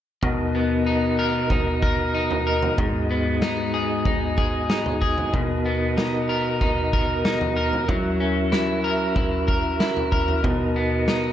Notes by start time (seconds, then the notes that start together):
0.23 B2 B3 D#4 F#4 A#4 D#5, kick, floor tom
0.55 B3
0.86 D#4
1.19 A#4
1.50 D#4, kick, floor tom
1.82 A#4, kick
2.15 D#4
2.31 floor tom
2.47 A#4
2.62 floor tom
2.78 G#2 G#4, kick, floor tom
3.10 B3
3.42 D#4, snare
3.74 G#4
4.05 D#4, kick, floor tom
4.38 G#4, kick
4.70 D#4, snare
4.86 floor tom
5.02 G#4, kick
5.18 floor tom
5.33 B2 B3 A#4, kick, floor tom
5.66 B3
5.97 D#4, snare
6.29 A#4
6.61 D#4, kick, floor tom
6.93 A#4, kick
7.25 D#4, snare
7.41 floor tom
7.57 A#4
7.73 floor tom
7.88 F#3 C#4 E4 F#4 E5, kick, floor tom
8.20 C#4
8.52 E4, snare
8.84 A#4
9.16 E4, kick, floor tom
9.48 A#4, kick
9.80 E4, snare
9.97 floor tom
10.12 A#4, kick, floor tom
10.28 floor tom
10.43 B2 B3 D#4 F#4 D#5, kick, floor tom
10.76 B3
11.08 D#4, snare